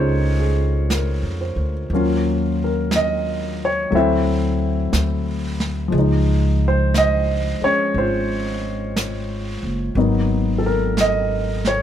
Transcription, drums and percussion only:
0.90 brush sweep, snare, hi-hat pedal
1.90 brush sweep
2.91 brush sweep, snare, hi-hat pedal
3.92 brush sweep
4.93 brush sweep, snare, hi-hat pedal
5.60 snare
5.94 brush sweep
6.94 brush sweep, snare, hi-hat pedal
7.96 brush sweep
8.96 brush sweep, snare, hi-hat pedal
9.96 brush sweep
10.97 brush sweep, snare, hi-hat pedal
11.65 snare

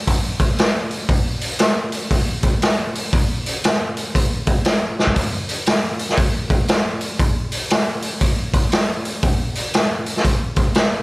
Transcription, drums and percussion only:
0.07 kick, open hi-hat
0.40 kick, open hi-hat
0.58 snare, open hi-hat
0.91 open hi-hat
1.09 kick, open hi-hat
1.41 open hi-hat
1.59 snare, open hi-hat
1.92 open hi-hat
2.11 kick, open hi-hat
2.43 kick, open hi-hat
2.62 snare, open hi-hat
2.95 open hi-hat
3.13 kick, open hi-hat
3.46 open hi-hat
3.64 snare, open hi-hat
3.97 open hi-hat
4.15 kick, open hi-hat
4.47 kick, open hi-hat
4.65 snare, open hi-hat
4.99 snare
5.07 kick
5.16 kick, open hi-hat
5.49 open hi-hat
5.66 snare, open hi-hat
5.99 open hi-hat
6.09 snare
6.17 kick, open hi-hat
6.50 kick, open hi-hat
6.68 snare, open hi-hat
7.01 open hi-hat
7.19 kick, open hi-hat
7.52 open hi-hat
7.70 snare, open hi-hat
8.02 open hi-hat
8.21 kick, open hi-hat
8.53 kick, open hi-hat
8.72 snare, open hi-hat
9.05 open hi-hat
9.23 kick, open hi-hat
9.55 open hi-hat
9.74 snare, open hi-hat
10.06 open hi-hat
10.17 snare
10.24 kick, open hi-hat
10.56 kick, open hi-hat
10.75 snare, open hi-hat

